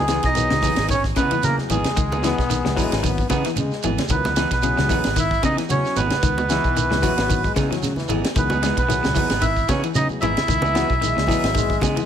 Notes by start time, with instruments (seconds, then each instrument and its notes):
Already playing: fingered electric bass C#2, trumpet G#3, melodica G#4
0.08 clean electric guitar E3 B3 D#4 G#4, snare, ride bell, shekere
0.23 fingered electric bass B1, trumpet D#4, melodica D#5, kick, snare, ride bell, shekere
0.35 clean electric guitar D#3, tine electric piano E3 F#3 B3 G#4, ride bell, shekere
0.50 fingered electric bass C#2, clean electric guitar C#3, snare, low conga, shekere
0.62 clean electric guitar E3 B3 D#4 G#4, kick, snare, open hi-hat, high conga, low conga, shekere
0.76 fingered electric bass G#1, clean electric guitar B3 D#4 G#4, snare, ride bell, shekere
0.88 clean electric guitar D#3, melodica C#5, kick, snare, ride bell, shekere
0.93 trumpet C#4
1.04 kick, snare, shekere
1.16 fingered electric bass C#3, clean electric guitar C#3 E3 B3 D#4 G#4, melodica B4, kick, ride bell, high conga, shekere
1.21 trumpet B3
1.31 clean electric guitar E3, ride bell, high conga, shekere
1.43 fingered electric bass C#3, tine electric piano F#3 B3 E4 G#4, melodica A#4, snare, ride bell, high conga, shekere
1.47 trumpet A#3
1.58 snare, high conga, shekere
1.69 fingered electric bass G#1, clean electric guitar E3 B3 D#4 G#4, melodica G#4, ride bell, low conga, shekere
1.74 trumpet G#3
1.84 snare, ride bell, high conga, shekere
1.97 fingered electric bass C#2, clean electric guitar D#3, kick, ride bell, shekere
2.12 clean electric guitar B3 D#4 G#4, high conga, shekere
2.22 clean electric guitar E3 B3 D#4 G#4, tine electric piano F#3 B3 E4 G#4, bass trombone B3, snare, ride bell, shekere
2.38 fingered electric bass B1, kick, snare, shekere
2.50 clean electric guitar D#3, snare, ride bell, shekere
2.64 fingered electric bass C#2, clean electric guitar C#3, tine electric piano E4 G#4, snare, low conga, shekere
2.75 clean electric guitar E3 B3 D#4 G#4, tine electric piano F#3 B3 E4 B4, bass trombone G#3, kick, snare, open hi-hat, high conga, low conga, shekere
2.92 fingered electric bass G#1, clean electric guitar B3 D#4 G#4, snare, ride bell, shekere
3.03 clean electric guitar D#3, bass trombone B3, kick, ride bell, shekere
3.18 kick, shekere
3.30 fingered electric bass C#3, clean electric guitar C#3 E3 B3 D#4 G#4, bass trombone B3, kick, ride bell, high conga, shekere
3.44 clean electric guitar E3, snare, ride bell, shekere
3.56 fingered electric bass C#3, bass trombone G#3, ride bell, high conga, shekere
3.71 snare, shekere
3.83 fingered electric bass G#1, clean electric guitar E3 B3 G#4, muted clean electric guitar stroke, ride bell, low conga, shekere
3.98 snare, ride bell, high conga, shekere
4.09 fingered electric bass C#2, clean electric guitar D#3, tine electric piano F#3 B3 E4 A#4, melodica B4, kick, ride bell, shekere
4.13 trumpet B3
4.24 snare, high conga, shekere
4.36 clean electric guitar E3 B3 D#4 G#4, snare, ride bell, shekere
4.51 fingered electric bass B1, melodica B4, kick, snare, ride bell, shekere
4.55 trumpet B3
4.62 clean electric guitar C#3, tine electric piano F#3 B3 E4 G#4, ride bell, shekere
4.77 fingered electric bass C#2, clean electric guitar C#3, snare, low conga, shekere
4.89 clean electric guitar E3 B3 D#4 G#4, kick, open hi-hat, high conga, low conga, shekere
5.04 fingered electric bass G#1, snare, ride bell, shekere
5.16 clean electric guitar D#3, trumpet E4, melodica E5, kick, ride bell, shekere
5.31 kick, shekere
5.43 fingered electric bass C#3, clean electric guitar C#3 E3 B3 D#4 G#4, trumpet D#4, melodica D#5, kick, ride bell, high conga, shekere
5.57 clean electric guitar E3, snare, ride bell, shekere
5.69 fingered electric bass C#3, tine electric piano F#3 B3 E4 F#4, trumpet C#4, melodica C#5, ride bell, high conga, shekere
5.85 snare, shekere
5.96 fingered electric bass G#1, clean electric guitar E3 B3 D#4 G#4, trumpet B3, melodica B4, ride bell, low conga, shekere
6.10 snare, ride bell, high conga, shekere
6.23 fingered electric bass C#2, clean electric guitar D#3, kick, ride bell, shekere
6.38 high conga, shekere
6.49 clean electric guitar E3 B3 D#4, bass trombone E3, tine electric piano F#3 B3 E4 G#4, snare, ride bell, shekere
6.64 fingered electric bass B1, kick, shekere
6.76 clean electric guitar D#3, ride bell, shekere
6.90 fingered electric bass C#2, clean electric guitar C#3, tine electric piano E4 G#4, snare, low conga, shekere
7.02 clean electric guitar E3 B3 D#4 G#4, tine electric piano F#3 B3 E4 F#4, kick, open hi-hat, high conga, low conga, shekere
7.17 fingered electric bass G#1, bass trombone B3, snare, ride bell, shekere
7.29 clean electric guitar D#3, kick, ride bell, shekere
7.44 bass trombone G#3, kick, shekere
7.56 clean electric guitar C#3 E3 B3 D#4 G#4, fingered electric bass C#3, kick, snare, ride bell, high conga, shekere
7.70 clean electric guitar E3, bass trombone F#3, snare, ride bell, high conga, shekere
7.82 fingered electric bass C#3, snare, ride bell, high conga, shekere
7.96 bass trombone E3, snare, high conga, shekere
8.08 fingered electric bass G#1, clean electric guitar E3 B3 D#4 G#4, ride bell, low conga, shekere
8.24 snare, ride bell, shekere
8.36 fingered electric bass C#2, clean electric guitar D#3, tine electric piano F#3 B3 E4 G#4, trumpet B3, melodica B4, kick, ride bell, shekere
8.50 clean electric guitar B3 D#4 G#4, high conga, shekere
8.62 clean electric guitar E3 G#3 B3 D#4 G#4, snare, ride bell, shekere
8.77 fingered electric bass B1, trumpet B3, melodica B4, kick, ride bell, shekere
8.88 clean electric guitar D#3, tine electric piano F#3 B3 E4 G#4, snare, ride bell, shekere
9.03 fingered electric bass C#2, clean electric guitar B2, snare, low conga, shekere
9.15 clean electric guitar E3 B3 D#4 G#4, kick, snare, open hi-hat, high conga, low conga, shekere
9.30 fingered electric bass G#1, clean electric guitar B3 D#4 G#4, snare, ride bell, shekere
9.41 clean electric guitar D#3, trumpet E4, melodica E5, kick, ride bell, shekere
9.57 kick, shekere
9.68 fingered electric bass C#3, clean electric guitar E3 B3 D#4 G#4, trumpet C#4, melodica C#5, muted clean electric guitar stroke, kick, snare, ride bell, high conga, shekere
9.83 clean electric guitar E3, ride bell, shekere
9.95 fingered electric bass C#3, tine electric piano F#3 B3 E4 G#4, trumpet D#4, melodica D#5, ride bell, high conga, shekere
10.09 high conga, shekere
10.21 fingered electric bass G#1, clean electric guitar E3 B3 D#4 G#4, trumpet E4, melodica E5, ride bell, low conga, shekere
10.37 snare, ride bell, high conga, shekere
10.48 fingered electric bass C#2, clean electric guitar D#3, kick, snare, ride bell, shekere
10.62 clean electric guitar B3 D#4 G#4, high conga, shekere
10.74 clean electric guitar E3 B3 D#4 G#4, tine electric piano F#3 B3 E4 F#4, bass trombone B3, snare, ride bell, shekere
10.90 fingered electric bass B1, kick, shekere
11.01 clean electric guitar D#3, bass trombone G#3, snare, ride bell, shekere
11.15 fingered electric bass C#2, clean electric guitar C#3, tine electric piano E4 G#4, snare, shekere
11.27 clean electric guitar E3 B3 D#4 G#4, tine electric piano F#3 B3 E4 G#4, kick, snare, open hi-hat, high conga, low conga, shekere
11.43 fingered electric bass G#1, snare, ride bell, shekere
11.54 clean electric guitar D#3, bass trombone G#3, kick, snare, ride bell, shekere
11.70 kick, shekere
11.81 fingered electric bass C#3, clean electric guitar C#3 E3 B3 D#4 G#4, kick, snare, ride bell, high conga, shekere
11.96 clean electric guitar E3, ride bell, high conga, shekere